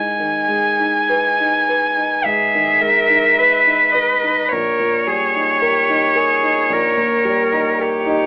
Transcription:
Already playing: grand piano G#2, violin G#5
0.19 grand piano D#3
0.48 grand piano G#3
0.79 grand piano D#4
1.09 grand piano B4
1.40 grand piano D#4
1.69 grand piano B4
1.96 grand piano D#4
2.23 grand piano G#2, cello G#4, violin E5
2.54 grand piano D#3
2.81 grand piano G#3, cello A#4
3.09 grand piano D#4
3.38 cello B4, grand piano B4
3.66 grand piano D#4
3.92 grand piano B4, violin D#5
4.23 grand piano D#4
4.48 grand piano A#1, cello A#4, violin C#5
4.79 grand piano A#2
5.07 grand piano G3, cello G#4
5.35 grand piano D#4
5.62 cello G4, grand piano A#4
5.89 grand piano D#4
6.15 cello G#4, grand piano A#4
6.43 grand piano D#4
6.69 grand piano A#1, cello A#4
6.97 grand piano A#2
7.24 grand piano G3
7.52 grand piano D#4
7.80 cello G4, grand piano A#4
8.06 grand piano D#4

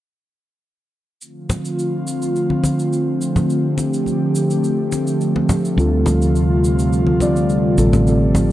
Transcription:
1.21 analog synth pad D3 F3 A3 C4 F4, cabasa
1.50 muted conga, low conga, cabasa
1.65 cabasa
1.79 cabasa
2.07 cabasa
2.22 cabasa
2.36 cabasa
2.50 high conga
2.64 high conga, cabasa
2.79 cabasa
2.93 cabasa
3.22 cabasa
3.36 muted conga, low conga, cabasa
3.49 analog synth pad G4, cabasa
3.78 muted conga, cabasa
3.94 cabasa
4.06 high conga, cabasa
4.35 cabasa
4.50 cabasa
4.64 cabasa
4.92 muted conga, cabasa
5.07 cabasa
5.21 cabasa
5.36 muted conga, high conga
5.49 muted conga, low conga, cabasa
5.65 cabasa
5.76 fretless electric bass D2, analog synth pad C3 G3 F4, synth keys D3 G3 C4 F4 A4, cabasa
6.06 muted conga, low conga, cabasa
6.22 cabasa
6.36 cabasa
6.65 cabasa
6.79 cabasa
6.93 cabasa
7.07 high conga
7.20 synth keys D3 G3 C4 F4 D5, high conga, cabasa
7.36 cabasa
7.50 cabasa
7.77 fretless electric bass A1, synth keys D3 G3 C4 F4 A4, cabasa
7.93 muted conga, low conga, cabasa
8.05 synth keys D3 G3 C4 F4 A4, analog synth pad G4, cabasa
8.35 muted conga, low conga, cabasa

